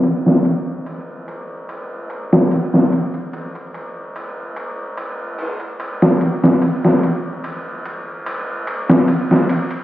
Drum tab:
RD |x-x-x-x-x-x-x-xx|xxx-x-x-x--xx-x-|x-x-x-x-x-x-x-xx|
HH |----------------|----------o-----|----------------|
SD |-o---------o-o--|-------------o-o|-o---------o-o--|